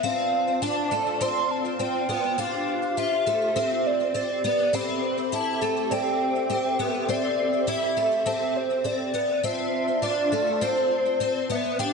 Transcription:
0.03 C4 F4 C5 D5 F5 A5
0.62 D4 A5
0.91 A3
1.21 C4 C6
1.51 A5
1.79 C4 G5
2.09 B3
2.38 D4 G4 F5
2.97 F4 E5
3.26 A3
3.56 C4
3.86 D5
4.14 C4 D5
4.44 B3 D5
4.73 C4 A4 E5 B5
5.32 E4 E5 A5
5.61 A3
5.91 C4 D5 G5
6.50 C4
6.79 B3
7.08 C4 D5 E5
7.67 E4 E5
7.97 A3
8.26 C4 E5 A5
8.57 C5
8.84 C4 D5
9.14 B3
9.43 C4 F4 C5 D5 E5 A5
10.02 D4 D5
10.32 A3
10.61 C4 C5
11.20 C4
11.50 B3 E5
11.79 D4 G4 F5 G5

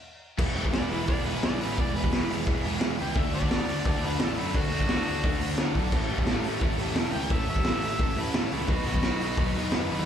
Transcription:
0.38 E1 E3 G#3 B3 E4 G#4, kick, crash
0.55 E1 E3 G#3 B3 E4 G#4, open hi-hat
0.65 kick
0.73 E1 E3 G#3 B3 E4 G#4 D5, snare, open hi-hat
0.90 E1 E3 G#3 B3 B4, open hi-hat
0.94 E4 G#4
1.07 E1 E3 G#3 B3 E4 D5, kick, open hi-hat
1.11 G#4
1.25 E1 E3 G#3 B3 E4 G#4 B4, open hi-hat
1.41 B1 E3 G#3 D5, snare, open hi-hat
1.45 B3 E4 G#4
1.61 A1 E3 G#3 B3 E4 G#4 B4, open hi-hat
1.78 E1 E3 G#3 B3 E4 G#4 D5, kick, open hi-hat
1.94 E1 E3 G#3 B3 B4, open hi-hat
1.99 E4 G#4
2.04 kick
2.11 E1 E3 G#3 B3 B4, snare, open hi-hat
2.15 E4 G#4
2.30 E1 E3 G#3 B3 E4 G#4, open hi-hat
2.46 E1 E3 G#3 B3 E4 G#4, kick, open hi-hat
2.64 E1 E3 G#3 B3 E4 G#4, open hi-hat
2.81 E1 E3 G#3 B3 E4 G#4, snare, open hi-hat
2.99 C#2 E3 G#3 B3 E4 G#4 G5, open hi-hat
3.15 D2 D3 A3 D4, kick, open hi-hat
3.19 F#4 A4 E5
3.32 D2 D3 A3 D4 F#4 A4 D5, open hi-hat
3.42 kick
3.51 D2 D3 A3 D4 F#4 A4, snare, open hi-hat
3.67 D2 D3 A3, open hi-hat
3.71 D4 F#4 A4
3.85 D2 D3 A3 D4 F#4, kick, open hi-hat
3.89 A4
4.03 D2 D3 A3 D4 F#4 A4 B4, open hi-hat
4.19 A1 D3 A3 D4 F#4 A4, snare, open hi-hat
4.23 A4
4.37 F#2 D3 A3 D4 E4 F#4 A4, open hi-hat
4.54 D2 D3 A3 D4 F#4 A4, kick, open hi-hat
4.71 D2 D3 A3 D4 F#4, open hi-hat
4.75 A4
4.81 kick
4.87 D2 D3 A3 D4 F#4 A4, snare, open hi-hat
5.05 D2 D3 A3 D4 F#4, open hi-hat
5.09 A4
5.22 D2 D3 A3 D4 F#4 A4, kick, open hi-hat
5.40 D2 D3 A3 D4 F#4 A4, open hi-hat
5.57 D2 D3 A3 D4 F#4 A4, snare, open hi-hat
5.75 B1 D3 A3 D4 F#4 A4, kick, open hi-hat
5.92 A1 A2 E3 A3 C#4 E4 A4, kick, crash
6.09 A1 A2 E3 A3 C#4 E4, open hi-hat
6.14 A4
6.18 kick
6.25 A1 A2 E3 A3, snare, open hi-hat
6.30 C#4 E4 A4
6.42 A1 A2 E3, open hi-hat
6.47 A3 C#4 E4 A4
6.61 A1 A2 E3 A3 C#4 E4, kick, open hi-hat
6.66 A4
6.78 A1 A2 E3 A3 C#4 E4, open hi-hat
6.82 A4
6.95 E1 A2 E3 A3 C#4 E4, snare, open hi-hat
6.99 A4
7.12 C#2 A2 E3 A3 C#4 E4 G5, open hi-hat
7.17 A4
7.29 A1 A2 E3 A3 C#4 E4 A4 E5, kick, open hi-hat
7.47 A1 A2 E3 A3 C#4 E4 A4 E5, open hi-hat
7.56 kick
7.64 A1 A2 E3 A3, snare, open hi-hat
7.68 C#4 E4 A4
7.82 A1 A2 E3 A3 C#4 E4, open hi-hat
7.86 A4
7.98 A1 A2 E3 A3 C#4 E4, kick, open hi-hat
8.03 A4
8.16 A1 A2 E3 A3 C#4 E4 A4, open hi-hat
8.21 B4
8.34 A1 A2 E3 A3 C#4 E4 A4, snare, open hi-hat
8.50 C#2 A2 E3 A3 C#4 E4 A4, open hi-hat
8.67 B1 B2 D#3 F#3 B3 D#4 F#4 B4, kick, open hi-hat
8.85 B1 B2 D#3 F#3 B3 D#4 B4, open hi-hat
8.94 kick
9.02 B1 B2 D#3 F#3 B3, snare, open hi-hat
9.06 D#4 B4
9.21 B1 B2 D#3 F#3 B3 D#4, open hi-hat
9.25 B4
9.37 B1 B2 D#3 F#3 B3, kick, open hi-hat
9.41 D#4 B4
9.54 B1 B2 D#3 F#3 B3 D#4, open hi-hat
9.58 B4
9.70 F#1 B2 D#3 F#3 B3 D#4 B4, snare, open hi-hat
9.88 E2 B2 D#3 F#3 B3 D#4 B4, open hi-hat

